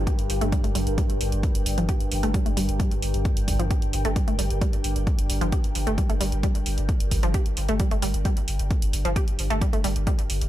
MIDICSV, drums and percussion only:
0, 0, Header, 1, 2, 480
1, 0, Start_track
1, 0, Key_signature, -2, "minor"
1, 0, Tempo, 454545
1, 1034, Time_signature, 4, 2, 24, 8
1, 11074, End_track
2, 0, Start_track
2, 0, Title_t, "Drums"
2, 73, Note_on_c, 9, 36, 123
2, 75, Note_on_c, 9, 42, 80
2, 178, Note_off_c, 9, 36, 0
2, 181, Note_off_c, 9, 42, 0
2, 198, Note_on_c, 9, 42, 56
2, 303, Note_off_c, 9, 42, 0
2, 314, Note_on_c, 9, 46, 114
2, 420, Note_off_c, 9, 46, 0
2, 437, Note_on_c, 9, 42, 54
2, 543, Note_off_c, 9, 42, 0
2, 553, Note_on_c, 9, 36, 121
2, 554, Note_on_c, 9, 42, 86
2, 659, Note_off_c, 9, 36, 0
2, 659, Note_off_c, 9, 42, 0
2, 678, Note_on_c, 9, 42, 51
2, 783, Note_off_c, 9, 42, 0
2, 794, Note_on_c, 9, 46, 111
2, 899, Note_off_c, 9, 46, 0
2, 917, Note_on_c, 9, 42, 55
2, 1023, Note_off_c, 9, 42, 0
2, 1033, Note_on_c, 9, 36, 124
2, 1034, Note_on_c, 9, 42, 82
2, 1139, Note_off_c, 9, 36, 0
2, 1140, Note_off_c, 9, 42, 0
2, 1158, Note_on_c, 9, 42, 53
2, 1264, Note_off_c, 9, 42, 0
2, 1275, Note_on_c, 9, 46, 113
2, 1380, Note_off_c, 9, 46, 0
2, 1397, Note_on_c, 9, 42, 52
2, 1503, Note_off_c, 9, 42, 0
2, 1513, Note_on_c, 9, 36, 123
2, 1514, Note_on_c, 9, 42, 53
2, 1619, Note_off_c, 9, 36, 0
2, 1620, Note_off_c, 9, 42, 0
2, 1637, Note_on_c, 9, 42, 79
2, 1743, Note_off_c, 9, 42, 0
2, 1754, Note_on_c, 9, 46, 115
2, 1860, Note_off_c, 9, 46, 0
2, 1877, Note_on_c, 9, 42, 53
2, 1983, Note_off_c, 9, 42, 0
2, 1993, Note_on_c, 9, 42, 84
2, 1994, Note_on_c, 9, 36, 127
2, 2099, Note_off_c, 9, 36, 0
2, 2099, Note_off_c, 9, 42, 0
2, 2117, Note_on_c, 9, 42, 52
2, 2223, Note_off_c, 9, 42, 0
2, 2234, Note_on_c, 9, 46, 111
2, 2339, Note_off_c, 9, 46, 0
2, 2357, Note_on_c, 9, 42, 52
2, 2463, Note_off_c, 9, 42, 0
2, 2473, Note_on_c, 9, 36, 125
2, 2474, Note_on_c, 9, 42, 88
2, 2579, Note_off_c, 9, 36, 0
2, 2580, Note_off_c, 9, 42, 0
2, 2598, Note_on_c, 9, 42, 52
2, 2703, Note_off_c, 9, 42, 0
2, 2714, Note_on_c, 9, 46, 113
2, 2820, Note_off_c, 9, 46, 0
2, 2838, Note_on_c, 9, 42, 54
2, 2944, Note_off_c, 9, 42, 0
2, 2953, Note_on_c, 9, 36, 125
2, 2955, Note_on_c, 9, 42, 80
2, 3059, Note_off_c, 9, 36, 0
2, 3060, Note_off_c, 9, 42, 0
2, 3078, Note_on_c, 9, 42, 51
2, 3183, Note_off_c, 9, 42, 0
2, 3194, Note_on_c, 9, 46, 111
2, 3300, Note_off_c, 9, 46, 0
2, 3317, Note_on_c, 9, 42, 50
2, 3423, Note_off_c, 9, 42, 0
2, 3433, Note_on_c, 9, 36, 126
2, 3434, Note_on_c, 9, 42, 50
2, 3539, Note_off_c, 9, 36, 0
2, 3540, Note_off_c, 9, 42, 0
2, 3557, Note_on_c, 9, 42, 79
2, 3662, Note_off_c, 9, 42, 0
2, 3673, Note_on_c, 9, 36, 64
2, 3674, Note_on_c, 9, 46, 111
2, 3779, Note_off_c, 9, 36, 0
2, 3779, Note_off_c, 9, 46, 0
2, 3797, Note_on_c, 9, 42, 52
2, 3903, Note_off_c, 9, 42, 0
2, 3913, Note_on_c, 9, 36, 127
2, 3913, Note_on_c, 9, 42, 80
2, 4019, Note_off_c, 9, 36, 0
2, 4019, Note_off_c, 9, 42, 0
2, 4036, Note_on_c, 9, 42, 51
2, 4142, Note_off_c, 9, 42, 0
2, 4153, Note_on_c, 9, 46, 110
2, 4258, Note_off_c, 9, 46, 0
2, 4276, Note_on_c, 9, 42, 50
2, 4382, Note_off_c, 9, 42, 0
2, 4393, Note_on_c, 9, 36, 125
2, 4393, Note_on_c, 9, 42, 81
2, 4499, Note_off_c, 9, 36, 0
2, 4499, Note_off_c, 9, 42, 0
2, 4517, Note_on_c, 9, 42, 50
2, 4623, Note_off_c, 9, 42, 0
2, 4633, Note_on_c, 9, 46, 110
2, 4739, Note_off_c, 9, 46, 0
2, 4757, Note_on_c, 9, 42, 51
2, 4862, Note_off_c, 9, 42, 0
2, 4873, Note_on_c, 9, 36, 120
2, 4874, Note_on_c, 9, 42, 79
2, 4979, Note_off_c, 9, 36, 0
2, 4979, Note_off_c, 9, 42, 0
2, 4998, Note_on_c, 9, 42, 50
2, 5103, Note_off_c, 9, 42, 0
2, 5113, Note_on_c, 9, 46, 115
2, 5219, Note_off_c, 9, 46, 0
2, 5237, Note_on_c, 9, 42, 50
2, 5342, Note_off_c, 9, 42, 0
2, 5353, Note_on_c, 9, 36, 123
2, 5354, Note_on_c, 9, 42, 51
2, 5459, Note_off_c, 9, 36, 0
2, 5459, Note_off_c, 9, 42, 0
2, 5476, Note_on_c, 9, 42, 78
2, 5582, Note_off_c, 9, 42, 0
2, 5593, Note_on_c, 9, 46, 107
2, 5698, Note_off_c, 9, 46, 0
2, 5717, Note_on_c, 9, 42, 51
2, 5823, Note_off_c, 9, 42, 0
2, 5833, Note_on_c, 9, 36, 118
2, 5833, Note_on_c, 9, 42, 77
2, 5939, Note_off_c, 9, 36, 0
2, 5939, Note_off_c, 9, 42, 0
2, 5957, Note_on_c, 9, 42, 50
2, 6063, Note_off_c, 9, 42, 0
2, 6074, Note_on_c, 9, 46, 104
2, 6180, Note_off_c, 9, 46, 0
2, 6198, Note_on_c, 9, 42, 51
2, 6304, Note_off_c, 9, 42, 0
2, 6313, Note_on_c, 9, 36, 115
2, 6315, Note_on_c, 9, 42, 79
2, 6419, Note_off_c, 9, 36, 0
2, 6420, Note_off_c, 9, 42, 0
2, 6437, Note_on_c, 9, 42, 49
2, 6543, Note_off_c, 9, 42, 0
2, 6554, Note_on_c, 9, 46, 113
2, 6659, Note_off_c, 9, 46, 0
2, 6677, Note_on_c, 9, 42, 50
2, 6782, Note_off_c, 9, 42, 0
2, 6793, Note_on_c, 9, 36, 119
2, 6794, Note_on_c, 9, 42, 76
2, 6899, Note_off_c, 9, 36, 0
2, 6899, Note_off_c, 9, 42, 0
2, 6917, Note_on_c, 9, 42, 50
2, 7023, Note_off_c, 9, 42, 0
2, 7033, Note_on_c, 9, 46, 104
2, 7139, Note_off_c, 9, 46, 0
2, 7157, Note_on_c, 9, 42, 47
2, 7262, Note_off_c, 9, 42, 0
2, 7273, Note_on_c, 9, 36, 118
2, 7273, Note_on_c, 9, 42, 52
2, 7379, Note_off_c, 9, 36, 0
2, 7379, Note_off_c, 9, 42, 0
2, 7396, Note_on_c, 9, 42, 77
2, 7502, Note_off_c, 9, 42, 0
2, 7512, Note_on_c, 9, 46, 104
2, 7513, Note_on_c, 9, 36, 61
2, 7618, Note_off_c, 9, 46, 0
2, 7619, Note_off_c, 9, 36, 0
2, 7635, Note_on_c, 9, 42, 52
2, 7741, Note_off_c, 9, 42, 0
2, 7752, Note_on_c, 9, 42, 76
2, 7753, Note_on_c, 9, 36, 120
2, 7858, Note_off_c, 9, 42, 0
2, 7859, Note_off_c, 9, 36, 0
2, 7875, Note_on_c, 9, 42, 51
2, 7981, Note_off_c, 9, 42, 0
2, 7993, Note_on_c, 9, 46, 103
2, 8098, Note_off_c, 9, 46, 0
2, 8116, Note_on_c, 9, 42, 48
2, 8221, Note_off_c, 9, 42, 0
2, 8232, Note_on_c, 9, 42, 78
2, 8233, Note_on_c, 9, 36, 117
2, 8338, Note_off_c, 9, 42, 0
2, 8339, Note_off_c, 9, 36, 0
2, 8356, Note_on_c, 9, 42, 48
2, 8462, Note_off_c, 9, 42, 0
2, 8473, Note_on_c, 9, 46, 109
2, 8579, Note_off_c, 9, 46, 0
2, 8597, Note_on_c, 9, 42, 50
2, 8702, Note_off_c, 9, 42, 0
2, 8713, Note_on_c, 9, 36, 115
2, 8713, Note_on_c, 9, 42, 78
2, 8819, Note_off_c, 9, 36, 0
2, 8819, Note_off_c, 9, 42, 0
2, 8836, Note_on_c, 9, 42, 51
2, 8942, Note_off_c, 9, 42, 0
2, 8953, Note_on_c, 9, 46, 107
2, 9058, Note_off_c, 9, 46, 0
2, 9075, Note_on_c, 9, 42, 51
2, 9181, Note_off_c, 9, 42, 0
2, 9193, Note_on_c, 9, 36, 117
2, 9193, Note_on_c, 9, 42, 51
2, 9299, Note_off_c, 9, 36, 0
2, 9299, Note_off_c, 9, 42, 0
2, 9316, Note_on_c, 9, 42, 80
2, 9422, Note_off_c, 9, 42, 0
2, 9434, Note_on_c, 9, 46, 102
2, 9539, Note_off_c, 9, 46, 0
2, 9557, Note_on_c, 9, 42, 53
2, 9663, Note_off_c, 9, 42, 0
2, 9673, Note_on_c, 9, 36, 112
2, 9674, Note_on_c, 9, 42, 80
2, 9779, Note_off_c, 9, 36, 0
2, 9779, Note_off_c, 9, 42, 0
2, 9797, Note_on_c, 9, 42, 50
2, 9902, Note_off_c, 9, 42, 0
2, 9913, Note_on_c, 9, 46, 101
2, 10019, Note_off_c, 9, 46, 0
2, 10037, Note_on_c, 9, 42, 50
2, 10142, Note_off_c, 9, 42, 0
2, 10153, Note_on_c, 9, 36, 116
2, 10154, Note_on_c, 9, 42, 82
2, 10258, Note_off_c, 9, 36, 0
2, 10260, Note_off_c, 9, 42, 0
2, 10278, Note_on_c, 9, 42, 48
2, 10383, Note_off_c, 9, 42, 0
2, 10393, Note_on_c, 9, 46, 99
2, 10499, Note_off_c, 9, 46, 0
2, 10517, Note_on_c, 9, 42, 50
2, 10622, Note_off_c, 9, 42, 0
2, 10633, Note_on_c, 9, 36, 113
2, 10633, Note_on_c, 9, 42, 85
2, 10738, Note_off_c, 9, 36, 0
2, 10739, Note_off_c, 9, 42, 0
2, 10757, Note_on_c, 9, 42, 52
2, 10863, Note_off_c, 9, 42, 0
2, 10874, Note_on_c, 9, 46, 107
2, 10980, Note_off_c, 9, 46, 0
2, 10998, Note_on_c, 9, 42, 53
2, 11074, Note_off_c, 9, 42, 0
2, 11074, End_track
0, 0, End_of_file